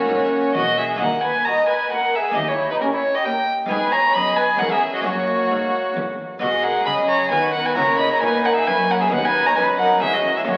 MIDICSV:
0, 0, Header, 1, 8, 480
1, 0, Start_track
1, 0, Tempo, 451467
1, 1074, Time_signature, 3, 2, 24, 8
1, 11239, End_track
2, 0, Start_track
2, 0, Title_t, "Violin"
2, 0, Program_c, 0, 40
2, 0, Note_on_c, 0, 73, 55
2, 577, Note_off_c, 0, 73, 0
2, 583, Note_on_c, 0, 75, 71
2, 823, Note_on_c, 0, 76, 57
2, 839, Note_off_c, 0, 75, 0
2, 1064, Note_off_c, 0, 76, 0
2, 1070, Note_on_c, 0, 78, 60
2, 1308, Note_off_c, 0, 78, 0
2, 1313, Note_on_c, 0, 80, 63
2, 1543, Note_on_c, 0, 82, 66
2, 1559, Note_off_c, 0, 80, 0
2, 1784, Note_off_c, 0, 82, 0
2, 1790, Note_on_c, 0, 80, 54
2, 2028, Note_off_c, 0, 80, 0
2, 2046, Note_on_c, 0, 78, 58
2, 2292, Note_on_c, 0, 76, 53
2, 2308, Note_off_c, 0, 78, 0
2, 2502, Note_off_c, 0, 76, 0
2, 2509, Note_on_c, 0, 75, 52
2, 2638, Note_on_c, 0, 73, 56
2, 2654, Note_off_c, 0, 75, 0
2, 2865, Note_off_c, 0, 73, 0
2, 2872, Note_on_c, 0, 71, 54
2, 2920, Note_off_c, 0, 71, 0
2, 2989, Note_on_c, 0, 70, 55
2, 3038, Note_off_c, 0, 70, 0
2, 3120, Note_on_c, 0, 73, 57
2, 3349, Note_on_c, 0, 75, 54
2, 3365, Note_off_c, 0, 73, 0
2, 3460, Note_on_c, 0, 79, 63
2, 3476, Note_off_c, 0, 75, 0
2, 3703, Note_off_c, 0, 79, 0
2, 3943, Note_on_c, 0, 80, 69
2, 4172, Note_on_c, 0, 82, 79
2, 4188, Note_off_c, 0, 80, 0
2, 4394, Note_on_c, 0, 83, 78
2, 4410, Note_off_c, 0, 82, 0
2, 4645, Note_on_c, 0, 80, 72
2, 4661, Note_off_c, 0, 83, 0
2, 4883, Note_on_c, 0, 78, 67
2, 4899, Note_off_c, 0, 80, 0
2, 5013, Note_on_c, 0, 76, 60
2, 5029, Note_off_c, 0, 78, 0
2, 5256, Note_off_c, 0, 76, 0
2, 5262, Note_on_c, 0, 75, 59
2, 5365, Note_off_c, 0, 75, 0
2, 5371, Note_on_c, 0, 73, 55
2, 6324, Note_off_c, 0, 73, 0
2, 6809, Note_on_c, 0, 75, 56
2, 7051, Note_on_c, 0, 78, 65
2, 7067, Note_off_c, 0, 75, 0
2, 7283, Note_off_c, 0, 78, 0
2, 7290, Note_on_c, 0, 83, 68
2, 7375, Note_off_c, 0, 83, 0
2, 7537, Note_on_c, 0, 82, 70
2, 7766, Note_off_c, 0, 82, 0
2, 7772, Note_on_c, 0, 80, 72
2, 8005, Note_off_c, 0, 80, 0
2, 8012, Note_on_c, 0, 78, 65
2, 8144, Note_on_c, 0, 80, 59
2, 8160, Note_off_c, 0, 78, 0
2, 8245, Note_off_c, 0, 80, 0
2, 8252, Note_on_c, 0, 82, 66
2, 8484, Note_off_c, 0, 82, 0
2, 8491, Note_on_c, 0, 83, 66
2, 8615, Note_off_c, 0, 83, 0
2, 8640, Note_on_c, 0, 82, 71
2, 8739, Note_off_c, 0, 82, 0
2, 8746, Note_on_c, 0, 80, 76
2, 8990, Note_on_c, 0, 78, 72
2, 9006, Note_off_c, 0, 80, 0
2, 9091, Note_off_c, 0, 78, 0
2, 9098, Note_on_c, 0, 76, 69
2, 9222, Note_on_c, 0, 80, 83
2, 9238, Note_off_c, 0, 76, 0
2, 9475, Note_on_c, 0, 78, 56
2, 9491, Note_off_c, 0, 80, 0
2, 9579, Note_off_c, 0, 78, 0
2, 9585, Note_on_c, 0, 76, 62
2, 9631, Note_off_c, 0, 76, 0
2, 9692, Note_on_c, 0, 78, 75
2, 9837, Note_on_c, 0, 80, 84
2, 9852, Note_off_c, 0, 78, 0
2, 10063, Note_on_c, 0, 82, 77
2, 10079, Note_off_c, 0, 80, 0
2, 10159, Note_off_c, 0, 82, 0
2, 10166, Note_on_c, 0, 80, 76
2, 10251, Note_off_c, 0, 80, 0
2, 10395, Note_on_c, 0, 78, 71
2, 10640, Note_off_c, 0, 78, 0
2, 10657, Note_on_c, 0, 76, 71
2, 10775, Note_on_c, 0, 75, 63
2, 10791, Note_off_c, 0, 76, 0
2, 11009, Note_off_c, 0, 75, 0
2, 11016, Note_on_c, 0, 76, 54
2, 11065, Note_off_c, 0, 76, 0
2, 11133, Note_on_c, 0, 73, 63
2, 11239, Note_off_c, 0, 73, 0
2, 11239, End_track
3, 0, Start_track
3, 0, Title_t, "Violin section"
3, 0, Program_c, 1, 48
3, 0, Note_on_c, 1, 61, 49
3, 568, Note_off_c, 1, 61, 0
3, 586, Note_on_c, 1, 66, 62
3, 813, Note_off_c, 1, 66, 0
3, 836, Note_on_c, 1, 68, 47
3, 1071, Note_off_c, 1, 68, 0
3, 1086, Note_on_c, 1, 70, 47
3, 1316, Note_on_c, 1, 71, 40
3, 1321, Note_off_c, 1, 70, 0
3, 1551, Note_off_c, 1, 71, 0
3, 1552, Note_on_c, 1, 75, 54
3, 1781, Note_on_c, 1, 71, 49
3, 1789, Note_off_c, 1, 75, 0
3, 2028, Note_off_c, 1, 71, 0
3, 2043, Note_on_c, 1, 70, 50
3, 2274, Note_off_c, 1, 70, 0
3, 2280, Note_on_c, 1, 68, 50
3, 2509, Note_on_c, 1, 67, 45
3, 2516, Note_off_c, 1, 68, 0
3, 2631, Note_off_c, 1, 67, 0
3, 2642, Note_on_c, 1, 64, 48
3, 2877, Note_off_c, 1, 64, 0
3, 2884, Note_on_c, 1, 63, 44
3, 2990, Note_on_c, 1, 61, 52
3, 2995, Note_off_c, 1, 63, 0
3, 3108, Note_off_c, 1, 61, 0
3, 3120, Note_on_c, 1, 64, 46
3, 3205, Note_off_c, 1, 64, 0
3, 3348, Note_on_c, 1, 67, 43
3, 3464, Note_on_c, 1, 70, 52
3, 3465, Note_off_c, 1, 67, 0
3, 3549, Note_off_c, 1, 70, 0
3, 3928, Note_on_c, 1, 71, 58
3, 4159, Note_off_c, 1, 71, 0
3, 4167, Note_on_c, 1, 73, 65
3, 4411, Note_on_c, 1, 75, 75
3, 4415, Note_off_c, 1, 73, 0
3, 4646, Note_on_c, 1, 71, 64
3, 4656, Note_off_c, 1, 75, 0
3, 4731, Note_off_c, 1, 71, 0
3, 4891, Note_on_c, 1, 70, 59
3, 5002, Note_on_c, 1, 68, 52
3, 5014, Note_off_c, 1, 70, 0
3, 5242, Note_on_c, 1, 66, 55
3, 5253, Note_off_c, 1, 68, 0
3, 5350, Note_off_c, 1, 66, 0
3, 5362, Note_on_c, 1, 66, 47
3, 6319, Note_off_c, 1, 66, 0
3, 6829, Note_on_c, 1, 66, 50
3, 6914, Note_off_c, 1, 66, 0
3, 7050, Note_on_c, 1, 70, 49
3, 7295, Note_off_c, 1, 70, 0
3, 7309, Note_on_c, 1, 75, 63
3, 7544, Note_off_c, 1, 75, 0
3, 7546, Note_on_c, 1, 73, 57
3, 7782, Note_off_c, 1, 73, 0
3, 7787, Note_on_c, 1, 71, 58
3, 8022, Note_off_c, 1, 71, 0
3, 8025, Note_on_c, 1, 70, 52
3, 8131, Note_on_c, 1, 71, 57
3, 8146, Note_off_c, 1, 70, 0
3, 8256, Note_off_c, 1, 71, 0
3, 8263, Note_on_c, 1, 73, 60
3, 8496, Note_on_c, 1, 75, 53
3, 8499, Note_off_c, 1, 73, 0
3, 8615, Note_on_c, 1, 73, 52
3, 8620, Note_off_c, 1, 75, 0
3, 8736, Note_on_c, 1, 71, 72
3, 8739, Note_off_c, 1, 73, 0
3, 8978, Note_off_c, 1, 71, 0
3, 8983, Note_on_c, 1, 70, 63
3, 9102, Note_off_c, 1, 70, 0
3, 9106, Note_on_c, 1, 68, 52
3, 9215, Note_on_c, 1, 71, 71
3, 9220, Note_off_c, 1, 68, 0
3, 9451, Note_off_c, 1, 71, 0
3, 9463, Note_on_c, 1, 70, 54
3, 9577, Note_off_c, 1, 70, 0
3, 9579, Note_on_c, 1, 68, 61
3, 9697, Note_off_c, 1, 68, 0
3, 9701, Note_on_c, 1, 71, 69
3, 9800, Note_off_c, 1, 71, 0
3, 9812, Note_on_c, 1, 71, 64
3, 10047, Note_off_c, 1, 71, 0
3, 10068, Note_on_c, 1, 73, 66
3, 10173, Note_on_c, 1, 71, 71
3, 10181, Note_off_c, 1, 73, 0
3, 10409, Note_off_c, 1, 71, 0
3, 10422, Note_on_c, 1, 70, 62
3, 10653, Note_off_c, 1, 70, 0
3, 10668, Note_on_c, 1, 68, 55
3, 10782, Note_off_c, 1, 68, 0
3, 10786, Note_on_c, 1, 66, 56
3, 11024, Note_off_c, 1, 66, 0
3, 11033, Note_on_c, 1, 68, 54
3, 11141, Note_on_c, 1, 66, 56
3, 11147, Note_off_c, 1, 68, 0
3, 11239, Note_off_c, 1, 66, 0
3, 11239, End_track
4, 0, Start_track
4, 0, Title_t, "Violin section"
4, 0, Program_c, 2, 48
4, 0, Note_on_c, 2, 66, 62
4, 837, Note_off_c, 2, 66, 0
4, 1554, Note_on_c, 2, 66, 46
4, 1912, Note_off_c, 2, 66, 0
4, 2016, Note_on_c, 2, 66, 40
4, 2381, Note_off_c, 2, 66, 0
4, 2990, Note_on_c, 2, 67, 51
4, 3345, Note_off_c, 2, 67, 0
4, 3465, Note_on_c, 2, 67, 48
4, 3822, Note_off_c, 2, 67, 0
4, 3933, Note_on_c, 2, 68, 52
4, 4383, Note_off_c, 2, 68, 0
4, 4410, Note_on_c, 2, 68, 55
4, 4886, Note_off_c, 2, 68, 0
4, 4897, Note_on_c, 2, 68, 48
4, 5371, Note_off_c, 2, 68, 0
4, 5374, Note_on_c, 2, 66, 53
4, 6613, Note_off_c, 2, 66, 0
4, 6820, Note_on_c, 2, 68, 50
4, 7741, Note_off_c, 2, 68, 0
4, 7791, Note_on_c, 2, 66, 47
4, 8264, Note_on_c, 2, 64, 55
4, 8267, Note_off_c, 2, 66, 0
4, 8736, Note_on_c, 2, 63, 53
4, 8742, Note_off_c, 2, 64, 0
4, 9216, Note_off_c, 2, 63, 0
4, 9231, Note_on_c, 2, 61, 51
4, 9693, Note_on_c, 2, 63, 61
4, 9701, Note_off_c, 2, 61, 0
4, 10150, Note_off_c, 2, 63, 0
4, 10162, Note_on_c, 2, 63, 58
4, 10639, Note_off_c, 2, 63, 0
4, 10646, Note_on_c, 2, 61, 51
4, 11111, Note_off_c, 2, 61, 0
4, 11123, Note_on_c, 2, 61, 58
4, 11239, Note_off_c, 2, 61, 0
4, 11239, End_track
5, 0, Start_track
5, 0, Title_t, "Harpsichord"
5, 0, Program_c, 3, 6
5, 0, Note_on_c, 3, 66, 40
5, 95, Note_on_c, 3, 44, 39
5, 542, Note_off_c, 3, 44, 0
5, 584, Note_on_c, 3, 40, 46
5, 1021, Note_off_c, 3, 66, 0
5, 1022, Note_on_c, 3, 58, 34
5, 1029, Note_off_c, 3, 40, 0
5, 1040, Note_on_c, 3, 63, 36
5, 1051, Note_on_c, 3, 66, 33
5, 1073, Note_on_c, 3, 39, 34
5, 1441, Note_off_c, 3, 39, 0
5, 2446, Note_off_c, 3, 58, 0
5, 2455, Note_off_c, 3, 63, 0
5, 2460, Note_off_c, 3, 66, 0
5, 2461, Note_on_c, 3, 58, 32
5, 2481, Note_on_c, 3, 63, 35
5, 2496, Note_on_c, 3, 67, 34
5, 2513, Note_on_c, 3, 39, 38
5, 2879, Note_off_c, 3, 39, 0
5, 3878, Note_off_c, 3, 58, 0
5, 3888, Note_off_c, 3, 63, 0
5, 3890, Note_on_c, 3, 56, 50
5, 3896, Note_off_c, 3, 67, 0
5, 3909, Note_on_c, 3, 59, 42
5, 3922, Note_on_c, 3, 63, 44
5, 3940, Note_on_c, 3, 68, 42
5, 3950, Note_on_c, 3, 44, 49
5, 4381, Note_off_c, 3, 56, 0
5, 4383, Note_off_c, 3, 44, 0
5, 4391, Note_off_c, 3, 59, 0
5, 4397, Note_off_c, 3, 63, 0
5, 4430, Note_on_c, 3, 42, 48
5, 4854, Note_on_c, 3, 56, 37
5, 4863, Note_off_c, 3, 42, 0
5, 4867, Note_on_c, 3, 61, 42
5, 4871, Note_off_c, 3, 68, 0
5, 4882, Note_on_c, 3, 68, 40
5, 4899, Note_on_c, 3, 40, 42
5, 5330, Note_on_c, 3, 58, 38
5, 5335, Note_off_c, 3, 61, 0
5, 5340, Note_off_c, 3, 40, 0
5, 5345, Note_off_c, 3, 56, 0
5, 5347, Note_on_c, 3, 61, 36
5, 5359, Note_off_c, 3, 68, 0
5, 5362, Note_on_c, 3, 66, 41
5, 5376, Note_on_c, 3, 42, 40
5, 5820, Note_off_c, 3, 42, 0
5, 5825, Note_off_c, 3, 58, 0
5, 5833, Note_off_c, 3, 61, 0
5, 5864, Note_on_c, 3, 44, 36
5, 6305, Note_off_c, 3, 44, 0
5, 6346, Note_on_c, 3, 40, 37
5, 6778, Note_off_c, 3, 66, 0
5, 6787, Note_off_c, 3, 40, 0
5, 6798, Note_on_c, 3, 59, 39
5, 6814, Note_on_c, 3, 66, 40
5, 6827, Note_on_c, 3, 47, 44
5, 7266, Note_off_c, 3, 47, 0
5, 7300, Note_on_c, 3, 49, 40
5, 7741, Note_off_c, 3, 49, 0
5, 7786, Note_on_c, 3, 51, 43
5, 8207, Note_off_c, 3, 59, 0
5, 8215, Note_off_c, 3, 66, 0
5, 8223, Note_off_c, 3, 51, 0
5, 8241, Note_on_c, 3, 64, 43
5, 8257, Note_on_c, 3, 66, 41
5, 8270, Note_on_c, 3, 49, 47
5, 8703, Note_off_c, 3, 49, 0
5, 8743, Note_on_c, 3, 46, 45
5, 9178, Note_off_c, 3, 46, 0
5, 9219, Note_on_c, 3, 42, 51
5, 9641, Note_off_c, 3, 64, 0
5, 9649, Note_off_c, 3, 66, 0
5, 9652, Note_on_c, 3, 59, 49
5, 9653, Note_off_c, 3, 42, 0
5, 9674, Note_on_c, 3, 63, 41
5, 9690, Note_on_c, 3, 66, 43
5, 9702, Note_on_c, 3, 39, 50
5, 10134, Note_off_c, 3, 39, 0
5, 10179, Note_on_c, 3, 42, 44
5, 10602, Note_off_c, 3, 59, 0
5, 10614, Note_off_c, 3, 42, 0
5, 10614, Note_off_c, 3, 63, 0
5, 10616, Note_on_c, 3, 59, 45
5, 10622, Note_off_c, 3, 66, 0
5, 10631, Note_on_c, 3, 61, 41
5, 10648, Note_on_c, 3, 68, 46
5, 10666, Note_on_c, 3, 40, 46
5, 11103, Note_off_c, 3, 40, 0
5, 11105, Note_on_c, 3, 58, 41
5, 11106, Note_off_c, 3, 59, 0
5, 11106, Note_off_c, 3, 61, 0
5, 11119, Note_on_c, 3, 61, 42
5, 11122, Note_off_c, 3, 68, 0
5, 11127, Note_on_c, 3, 66, 41
5, 11146, Note_on_c, 3, 42, 48
5, 11239, Note_off_c, 3, 42, 0
5, 11239, Note_off_c, 3, 58, 0
5, 11239, Note_off_c, 3, 61, 0
5, 11239, Note_off_c, 3, 66, 0
5, 11239, End_track
6, 0, Start_track
6, 0, Title_t, "Viola section"
6, 0, Program_c, 4, 48
6, 0, Note_on_c, 4, 58, 50
6, 861, Note_off_c, 4, 58, 0
6, 1549, Note_on_c, 4, 58, 44
6, 1909, Note_off_c, 4, 58, 0
6, 2023, Note_on_c, 4, 58, 39
6, 2385, Note_off_c, 4, 58, 0
6, 2985, Note_on_c, 4, 58, 47
6, 3343, Note_off_c, 4, 58, 0
6, 3468, Note_on_c, 4, 58, 44
6, 3824, Note_off_c, 4, 58, 0
6, 3940, Note_on_c, 4, 59, 52
6, 4387, Note_off_c, 4, 59, 0
6, 4422, Note_on_c, 4, 59, 58
6, 4892, Note_off_c, 4, 59, 0
6, 4903, Note_on_c, 4, 61, 43
6, 5374, Note_off_c, 4, 61, 0
6, 5380, Note_on_c, 4, 58, 53
6, 6616, Note_off_c, 4, 58, 0
6, 6821, Note_on_c, 4, 56, 46
6, 7272, Note_off_c, 4, 56, 0
6, 7310, Note_on_c, 4, 54, 45
6, 7788, Note_off_c, 4, 54, 0
6, 7791, Note_on_c, 4, 59, 43
6, 8266, Note_on_c, 4, 58, 55
6, 8268, Note_off_c, 4, 59, 0
6, 9693, Note_on_c, 4, 59, 59
6, 9696, Note_off_c, 4, 58, 0
6, 10166, Note_on_c, 4, 54, 54
6, 10172, Note_off_c, 4, 59, 0
6, 10645, Note_on_c, 4, 56, 47
6, 10650, Note_off_c, 4, 54, 0
6, 11126, Note_off_c, 4, 56, 0
6, 11136, Note_on_c, 4, 58, 48
6, 11239, Note_off_c, 4, 58, 0
6, 11239, End_track
7, 0, Start_track
7, 0, Title_t, "Cello section"
7, 0, Program_c, 5, 48
7, 97, Note_on_c, 5, 44, 55
7, 551, Note_off_c, 5, 44, 0
7, 580, Note_on_c, 5, 40, 59
7, 1036, Note_off_c, 5, 40, 0
7, 1061, Note_on_c, 5, 39, 52
7, 1448, Note_off_c, 5, 39, 0
7, 2503, Note_on_c, 5, 39, 53
7, 2886, Note_off_c, 5, 39, 0
7, 3938, Note_on_c, 5, 44, 60
7, 4386, Note_off_c, 5, 44, 0
7, 4417, Note_on_c, 5, 42, 52
7, 4865, Note_off_c, 5, 42, 0
7, 4899, Note_on_c, 5, 40, 51
7, 5348, Note_off_c, 5, 40, 0
7, 5376, Note_on_c, 5, 42, 51
7, 5829, Note_off_c, 5, 42, 0
7, 5854, Note_on_c, 5, 44, 45
7, 6309, Note_off_c, 5, 44, 0
7, 6342, Note_on_c, 5, 40, 51
7, 6793, Note_off_c, 5, 40, 0
7, 6827, Note_on_c, 5, 47, 46
7, 7275, Note_off_c, 5, 47, 0
7, 7307, Note_on_c, 5, 49, 45
7, 7777, Note_off_c, 5, 49, 0
7, 7782, Note_on_c, 5, 51, 55
7, 8253, Note_off_c, 5, 51, 0
7, 8262, Note_on_c, 5, 49, 55
7, 8732, Note_off_c, 5, 49, 0
7, 8743, Note_on_c, 5, 46, 51
7, 9210, Note_off_c, 5, 46, 0
7, 9211, Note_on_c, 5, 42, 61
7, 9682, Note_off_c, 5, 42, 0
7, 9694, Note_on_c, 5, 39, 62
7, 10162, Note_off_c, 5, 39, 0
7, 10171, Note_on_c, 5, 42, 55
7, 10643, Note_off_c, 5, 42, 0
7, 10651, Note_on_c, 5, 40, 57
7, 11130, Note_on_c, 5, 42, 55
7, 11138, Note_off_c, 5, 40, 0
7, 11239, Note_off_c, 5, 42, 0
7, 11239, End_track
8, 0, Start_track
8, 0, Title_t, "Double bass section"
8, 0, Program_c, 6, 48
8, 106, Note_on_c, 6, 32, 59
8, 557, Note_off_c, 6, 32, 0
8, 593, Note_on_c, 6, 28, 59
8, 1042, Note_off_c, 6, 28, 0
8, 11239, End_track
0, 0, End_of_file